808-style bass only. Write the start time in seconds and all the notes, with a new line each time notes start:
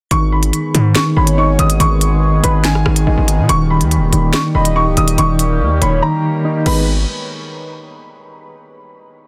0.11 G#1
0.74 G#2
1.17 G#1
1.59 G#1
1.80 G#1
2.43 G#1
2.86 G#1
3.07 G#1
3.17 G#1
3.39 B2
3.49 D#1
3.81 D#2
3.97 D#1
4.12 D#1
4.55 D#1
4.86 C#1
4.97 D#1
5.18 D#1
5.60 D#2
5.82 D#1
6.66 G#1